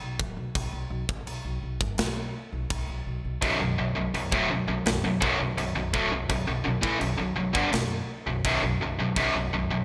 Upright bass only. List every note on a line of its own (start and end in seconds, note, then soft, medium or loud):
0.01 0.18 B1 medium
0.19 0.36 D1 medium
0.37 0.54 B1 medium
0.55 0.72 B1 medium
0.73 0.90 B1 medium
0.90 1.07 B1 medium
1.09 1.26 A1 medium
1.27 1.44 B1 medium
1.45 1.62 B1 medium
1.63 1.80 B1 medium
1.80 1.97 G1 medium
1.98 2.32 B1 medium
2.53 2.69 B1 medium
2.70 2.87 B1 medium
2.89 3.05 B1 medium
3.06 3.23 B1 medium
3.25 3.41 B1 medium
3.42 3.59 B1 medium
3.60 3.77 B1 medium
3.78 3.95 B1 medium
3.96 4.13 B1 medium
4.14 4.31 B1 medium
4.32 4.49 D1 medium
4.49 4.66 B1 medium
4.67 4.84 B1 medium
4.85 5.02 B1 medium
5.03 5.20 B1 medium
5.22 5.39 B1 medium
5.39 5.56 B1 medium
5.57 5.74 B1 medium
5.75 5.92 B1 medium
5.94 6.10 D1 medium
6.12 6.28 B1 medium
6.30 6.46 B1 medium
6.47 6.64 B1 medium
6.66 6.82 B1 medium
6.83 7.00 A1 medium
7.01 7.17 B1 medium
7.19 7.36 B1 medium
7.37 7.54 B1 medium
7.55 7.72 G1 medium
7.73 8.06 B1 medium
8.27 8.43 B1 medium
8.45 8.61 B1 medium
8.63 8.79 B1 medium
8.80 8.97 B1 medium
8.99 9.15 B1 medium
9.16 9.33 B1 medium
9.34 9.51 B1 medium
9.53 9.69 B1 medium
9.71 9.85 B1 medium